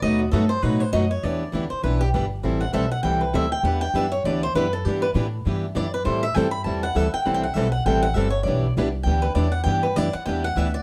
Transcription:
X:1
M:4/4
L:1/8
Q:"Swing" 1/4=199
K:Em
V:1 name="Steel-string acoustic guitar"
^d F A c B c d ^c | d3 c B G z2 | z f e f g B e g | f g e ^c d =c B A |
G B z4 d B | c e g b a f e g | (3f g f e f g f e ^c | d2 z2 g B d f |
g B d f g f e d |]
V:2 name="Steel-string acoustic guitar"
[B,,F,A,^DFB] z [B,,F,A,DFB] z [B,,F,A,DFB] z [B,,F,A,DFB] z | [E,G,DEB] z [E,G,DEB] z [E,G,DEB] z [E,G,DEB] z | [E,G,CEA] z [E,G,CEA] z [E,G,CEA] z [E,G,CEA] z | [E,G,DEB] z [E,G,DEB] z [E,G,DEB] z [E,G,DEB] z |
[E,G,DEB] z [E,G,DEB] z [E,G,DEB] z [E,G,DEB] z | [E,G,CEA] z [E,G,CEA] z [E,G,CEA] z [E,G,CEA] z | [E,G,CEA] z [E,G,CEA] z [E,G,CEA] z [E,G,CEA] z | [E,G,DEB] z [E,G,DEB] z [E,G,DEB] z [E,G,DEB] z |
[E,G,DEB] z [E,G,DEB] z [E,G,DEB] z [E,G,DEB] z |]
V:3 name="Steel-string acoustic guitar"
[B,,F,A,^DF] z [B,,F,A,DF] z [B,,F,A,DF] z [B,,F,A,DF] z | [E,B,DG] z [E,B,DG] z [E,B,DG] z [E,B,DG] z | [E,G,CEA] z [E,G,CEA] z [E,G,CEA] z [E,G,CEA] z | [E,B,DG] z [E,B,DG] z [E,B,DG] z [E,B,DG] z |
[E,B,DG] z [E,B,DG] z [E,B,DG] z [E,B,DG] z | [E,G,CEA] z [E,G,CEA] z [E,G,CEA] z [E,G,CEA] z | [E,G,CEA] z [E,G,CEA] z [E,G,CEA] z [E,G,CEA] z | [E,B,DG] z [E,B,DG] z [E,B,DG] z [E,B,DG] z |
[E,B,DG] z [E,B,DG] z [E,B,DG] z [E,B,DG] z |]
V:4 name="Upright bass" clef=bass
^D,,2 G,,2 A,,2 F,,2 | E,,2 D,, z B,,,2 G,,,2 | A,,,2 B,,,2 C,,2 D,,2 | E,,2 F,,2 D,,2 F,,2 |
G,,2 A,,2 G,,2 F,,2 | A,,2 G,,2 E,,2 D,, z | C,,2 B,,,2 A,,,2 G,,,2 | B,,,2 C,,2 D,,2 E,,2 |
G,,2 F,, z E,,2 D,,2 |]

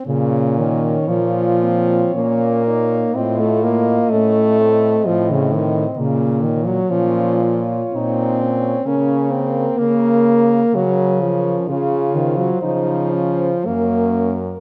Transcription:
X:1
M:3/4
L:1/16
Q:1/4=62
K:Bbm
V:1 name="French horn"
z2 d4 d4 d2 | e2 e4 e4 e2 | z2 d4 d4 d2 | B2 B4 B4 B2 |
z2 c4 c2 B2 B2 |]
V:2 name="French horn"
D4 B,2 C2 D2 E2 | F4 D2 C6 | B,2 z2 D2 F2 E2 D2 | B,8 D4 |
F4 E2 D2 D2 z2 |]
V:3 name="French horn" clef=bass
D,2 E,2 F,4 B,4 | C =A, B,2 A,4 F, D, E,2 | D,2 E, G, F,3 z C4 | D2 C2 B,4 G,2 F,2 |
D,2 E, G, F,4 B,3 z |]
V:4 name="French horn" clef=bass
B,,4 B,,4 B,,4 | =A,,4 A,,4 A,,4 | B,,4 B,,4 B,,4 | D,4 D,4 D,4 |
D,4 D,4 G,,4 |]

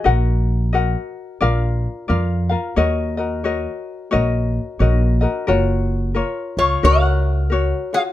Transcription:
X:1
M:4/4
L:1/8
Q:"Swing" 1/4=88
K:Ebm
V:1 name="Resonator guitar played with a steel bar"
z8 | z8 | [K:F#] z3 [Ec] [Af]3 [Ge] |]
V:2 name="Ukulele"
[GBeg]2 [GBeg]2 [FB=df]2 [FBdf] [FBf] | [GBde] [GBe] [GBde]2 [GBde]2 [GBde] [GBe] | [K:F#] [EFAc]2 [EAc]2 [FAc]2 [FAc] [EFc] |]
V:3 name="Upright bass" clef=bass
B,,,4 B,,,2 F,,2 | E,,4 B,,,2 B,,,2 | [K:F#] F,,,3 C,, C,,4 |]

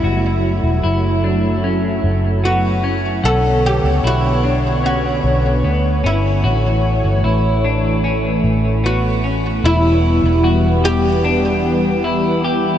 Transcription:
X:1
M:4/4
L:1/16
Q:1/4=75
K:Edor
V:1 name="Oud"
E6 z6 F4 | A2 G2 F4 F6 E2- | E6 z6 F4 | E6 G8- G2 |]
V:2 name="Clean electric guitar"
F4 E2 D2 C4 B,2 C2 | f4 E2 D2 C4 B,2 C2 | F4 E2 D2 C4 B,2 C2 | E4 F2 G2 D4 E2 G2 |]
V:3 name="Analog synth pad"
[F,A,E]16 | [D,B,c]16 | [E,A,c]16 | [E,G,B,]16 |]
V:4 name="Fingered electric bass" clef=bass
F,,,3 E,,, F,,,6 F,,,6 | B,,,3 C,, B,,,6 B,,,2 D,,2 G,,,2 | A,,,3 G,,, A,,,6 A,,,6 | E,,,3 E,,,12- E,,, |]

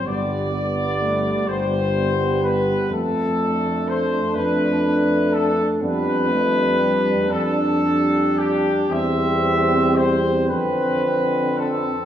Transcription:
X:1
M:6/8
L:1/8
Q:3/8=41
K:G
V:1 name="Trumpet section"
d3 c2 B | [K:Ddor] A2 c B2 A | B3 A2 G | e2 c B2 A |]
V:2 name="Flugelhorn"
B, B,3 B,2 | [K:Ddor] z D3 D2 | D D3 D2 | C3 C3 |]
V:3 name="Euphonium"
G, B, A, G,3 | [K:Ddor] A,3 D3 | B, A, G, D2 z | C6 |]
V:4 name="Euphonium" clef=bass
G, G,3 G,2 | [K:Ddor] z A,3 A,2 | G, G,3 G,2 | G,3 D,3 |]
V:5 name="Tuba" clef=bass
G,,,3 G,,,3 | [K:Ddor] F,,3 F,,3 | F,,3 F,,3 | E,,3 F,,3 |]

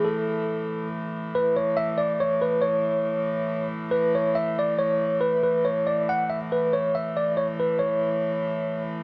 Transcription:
X:1
M:3/4
L:1/8
Q:1/4=140
K:A
V:1 name="Tine electric piano"
A4 z2 | B c e d c B | c4- c z | B c e d c2 |
B B c d f e | B c e d c B | c4- c z |]
V:2 name="Hurdy-gurdy" clef=bass
[A,,E,]6 | [A,,E,]6- | [A,,E,]6- | [A,,E,]6- |
[A,,E,]6 | [A,,E,]6- | [A,,E,]6 |]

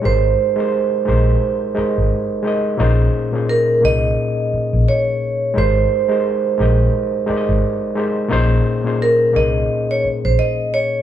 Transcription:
X:1
M:4/4
L:1/16
Q:"Swing 16ths" 1/4=87
K:Bbdor
V:1 name="Vibraphone"
c12- c2 z2 | z4 B2 e6 d4 | c12- c2 z2 | z4 B2 e3 d2 c e2 d2 |]
V:2 name="Reed electric piano"
[A,EGBc]3 [A,EGBc]3 [A,EGBc]4 [A,EGBe]4 [A,EGBe]2 | [B,,B,DEAc]3 [B,,B,DEAe]3 [B,,B,DEAB]6- [B,,B,DEAB] z3 | [A,EGBc]3 [A,EGBc]3 [A,EGBe]4 [A,EGB=de]4 [A,EGBc]2 | [B,,B,DEAc]3 [B,,B,DEAc]3 [B,,B,DEAB]6- [B,,B,DEAB] z3 |]
V:3 name="Fingered electric bass" clef=bass
A,,,2 z4 B,,,2 z3 A,,, z4 | B,,,2 z4 C,,2 z3 B,,, z4 | A,,,2 z4 B,,,2 z3 A,,, z4 | B,,,2 z4 C,,2 z3 B,,, z4 |]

